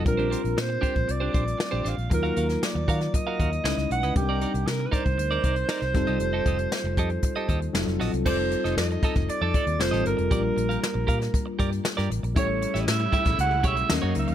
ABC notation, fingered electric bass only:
X:1
M:4/4
L:1/16
Q:1/4=117
K:Bb
V:1 name="Fingered electric bass" clef=bass
B,,,3 B,,, B,,2 z B,,, C,,2 B,,,2 z B,,, A,,, B,,, | E,,2 E,,2 z E,, E,2 z2 E,,2 _D,, D,, _C,, D,, | z3 C,, C,2 z C,, D,,2 C,,2 z C,, F,,, C,, | F,,,2 F,,,2 z F,,, F,,2 z2 E,,2 F,,, F,,, B,,, C,, |
z3 F,,, F,,2 z F,,, z F,, z E,, F,,, A,,, G,,, F,,, | B,,,2 B,,,2 z B,,, B,,2 z2 G,,2 z G,, A,,, B,,, | A,,,3 A,,, A,,2 z A,,, ^C,,2 _C,,2 E,, _G,, _D,, E,, |]